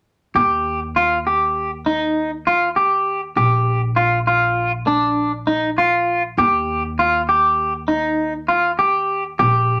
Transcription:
0.35 3.32 D#2 medium
0.35 0.80 G4 medium
0.96 1.18 F4 medium
1.27 1.70 G4 medium
1.86 2.30 D#4 medium
2.47 2.69 F4 medium
2.76 3.21 G4 medium
3.36 6.34 A#1 medium
3.36 3.81 G4 medium
3.96 4.19 F4 medium
4.27 4.71 F4 medium
4.87 5.31 D4 medium
5.47 5.69 D#4 medium
5.78 6.22 F4 medium
6.38 9.36 D#2 medium
6.38 6.83 G4 medium
6.99 7.21 F4 medium
7.29 7.73 G4 medium
7.88 8.33 D#4 medium
8.48 8.71 F4 medium
8.79 9.23 G4 medium
9.39 9.80 A#1 medium
9.39 9.80 G4 medium

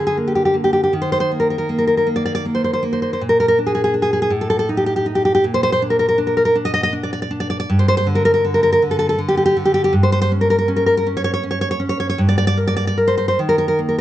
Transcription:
0.00 0.88 D3 soft
0.07 0.16 G#4 medium
0.17 0.53 A#3 soft
0.28 0.34 G4 medium
0.35 0.44 G4 medium
0.45 0.55 G4 medium
0.54 0.92 A#3 soft
0.64 0.72 G4 medium
0.73 0.82 G4 medium
0.83 0.93 G4 medium
0.93 3.16 D#3 medium
1.02 1.11 C5 medium
1.12 1.19 C5 medium
1.20 1.30 C5 medium
1.32 1.68 A#3 soft
1.40 1.49 A#4 medium
1.50 1.57 A#4 medium
1.58 1.69 A#4 medium
1.69 2.05 A#3 soft
1.78 1.86 A#4 medium
1.87 1.96 A#4 medium
1.97 2.07 A#4 medium
2.07 2.44 A#3 soft
2.16 2.24 D5 medium
2.25 2.34 D5 medium
2.35 2.45 D5 medium
2.45 2.82 A#3 soft
2.55 2.63 C5 medium
2.64 2.72 C5 medium
2.73 2.83 C5 medium
2.83 3.20 A#3 soft
2.93 3.01 C5 medium
3.02 3.11 C5 medium
3.13 3.21 C5 medium
3.21 4.28 A#2 medium
3.29 3.38 A#4 medium
3.40 3.47 A#4 medium
3.48 3.57 A#4 medium
3.59 3.93 D4 soft
3.66 3.73 G#4 medium
3.75 3.83 G#4 medium
3.84 3.93 G#4 medium
3.94 4.31 D4 medium
4.02 4.12 G#4 medium
4.13 4.21 G#4 medium
4.22 4.31 G#4 medium
4.30 5.40 A2 medium
4.41 4.49 A4 medium
4.50 4.58 A4 medium
4.59 4.68 A4 medium
4.69 5.05 D#4 medium
4.77 4.85 G4 medium
4.86 4.95 G4 medium
4.96 5.05 G4 medium
5.06 5.44 D#4 medium
5.15 5.24 G4 medium
5.25 5.33 G4 medium
5.35 5.44 G4 medium
5.44 7.65 A#2 medium
5.54 5.62 C5 medium
5.63 5.71 C5 loud
5.72 5.81 C5 loud
5.82 6.17 D4 medium
5.90 5.98 A#4 medium
5.99 6.07 A#4 medium
6.08 6.18 A#4 medium
6.18 6.54 D4 medium
6.27 6.36 A#4 medium
6.37 6.44 A#4 medium
6.45 6.55 A#4 medium
6.55 6.92 D4 medium
6.65 6.72 D#5 loud
6.74 6.82 D#5 loud
6.83 6.93 D#5 loud
6.93 7.29 D4 medium
7.03 7.12 D5 medium
7.13 7.21 D5 medium
7.22 7.31 D5 medium
7.31 7.69 D4 medium
7.40 7.49 D5 medium
7.50 7.58 D5 medium
7.60 7.69 D5 medium
7.70 9.90 G2 medium
7.79 7.87 C5 medium
7.88 7.96 C5 medium
7.97 8.06 C5 loud
8.07 8.43 D3 medium
8.15 8.24 A#4 medium
8.25 8.33 A#4 medium
8.34 8.43 A#4 medium
8.45 8.81 D3 medium
8.54 8.62 A#4 medium
8.63 8.71 A#4 medium
8.72 8.82 A#4 loud
8.82 9.17 D3 medium
8.91 8.98 A4 medium
8.99 9.08 A4 loud
9.09 9.19 A4 loud
9.18 9.55 D3 medium
9.28 9.36 G4 medium
9.37 9.44 G4 medium
9.46 9.56 G4 loud
9.57 9.94 D3 medium
9.65 9.73 G4 medium
9.74 9.83 G4 loud
9.84 9.94 G4 loud
9.93 12.14 G2 medium
10.03 10.11 C5 medium
10.12 10.20 C5 loud
10.22 10.31 C5 loud
10.32 10.67 C#4 medium
10.41 10.49 A#4 medium
10.50 10.57 A#4 medium
10.58 10.68 A#4 medium
10.68 11.05 C#4 medium
10.76 10.85 A#4 medium
10.86 10.96 A#4 medium
10.97 11.06 A#4 medium
11.07 11.42 C#4 medium
11.17 11.23 C#5 medium
11.24 11.32 C#5 medium
11.34 11.43 C#5 medium
11.43 11.78 C#4 medium
11.51 11.60 C#5 medium
11.61 11.70 C#5 medium
11.71 11.80 C#5 medium
11.80 12.18 C#4 medium
11.89 11.99 C#5 medium
12.00 12.08 C#5 medium
12.09 12.19 C#5 loud
12.18 13.35 G2 medium
12.29 12.37 D5 medium
12.38 12.46 D5 loud
12.47 12.58 D5 loud
12.57 12.96 A#4 medium
12.67 12.75 D5 medium
12.77 12.86 D5 loud
12.87 12.98 D5 medium
12.98 13.39 A#4 medium
13.08 13.16 C5 medium
13.17 13.27 C5 medium
13.28 13.39 C5 medium
13.39 14.01 D#3 medium
13.49 13.57 A#4 medium
13.58 13.67 A#4 medium
13.68 13.79 A#4 medium
13.79 14.01 A#3 soft
13.89 13.97 A#4 medium

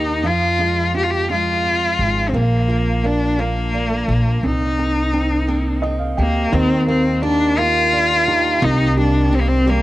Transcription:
0.00 0.24 D#2 medium
0.00 0.24 D#3 medium
0.00 0.26 D#3 medium
0.00 0.27 A#3 soft
0.00 0.32 A#3 medium
0.00 0.27 D#4 medium
0.00 0.31 D#4 medium
0.00 0.32 G4 medium
0.24 1.95 F2 medium
0.24 0.58 F3 medium
0.24 2.34 F3 medium
0.24 0.95 F4 medium
0.59 0.93 F3 soft
0.59 1.28 G#3 soft
0.94 1.28 F3 soft
0.94 1.63 C4 medium
0.94 1.05 G4 medium
1.03 1.12 F4 medium
1.10 1.30 G4 medium
1.30 2.31 F3 medium
1.30 2.41 G#3 medium
1.30 2.31 F4 medium
1.65 2.41 C4 soft
1.99 2.32 G#1 medium
1.99 2.41 G#4 medium
2.29 2.37 C4 medium
2.33 4.04 A#1 medium
2.33 4.44 F3 medium
2.33 3.02 A#3 medium
2.33 3.07 A#3 medium
2.68 3.38 A#3 medium
2.68 3.36 F4 soft
3.03 4.39 A#3 medium
3.03 3.73 D4 medium
3.03 3.42 D4 medium
3.38 4.79 A#3 medium
3.38 4.46 A#3 medium
3.38 4.40 F4 medium
3.74 4.51 D4 medium
4.08 4.41 A#1 medium
4.08 4.51 F4 medium
4.43 6.14 C2 medium
4.43 4.77 C4 medium
4.43 5.84 D#4 medium
4.78 5.48 A#3 medium
4.78 5.12 C4 soft
5.13 5.46 C4 soft
5.13 5.82 C4 medium
5.48 6.88 A#3 medium
5.48 6.50 C4 soft
5.82 6.60 C4 medium
5.82 5.99 D#5 medium
5.99 6.16 F5 medium
6.17 6.51 D2 medium
6.17 6.56 A#3 medium
6.17 7.22 G4 medium
6.17 6.50 G5 medium
6.52 8.58 D#2 loud
6.52 7.21 D#3 medium
6.52 8.62 D#3 medium
6.52 6.88 C4 loud
6.87 7.56 A#3 medium
6.87 7.57 A#3 medium
6.87 7.21 C4 medium
7.22 8.26 D#3 medium
7.22 7.60 D4 loud
7.22 8.27 G4 medium
7.57 8.59 A#3 medium
7.57 8.97 A#3 medium
7.57 8.66 F4 loud
7.93 8.69 D4 medium
8.28 8.62 D#3 medium
8.28 9.32 G4 medium
8.62 9.82 C2 loud
8.62 9.30 C3 medium
8.62 9.82 D#3 medium
8.62 8.98 D#4 loud
8.97 9.65 G3 medium
8.97 9.66 A#3 medium
8.97 9.36 D4 medium
9.32 9.82 C3 medium
9.32 9.42 C4 medium
9.32 9.82 G4 medium
9.41 9.50 A#3 medium
9.48 9.71 C4 loud
9.66 9.82 G3 medium
9.66 9.82 A#3 medium

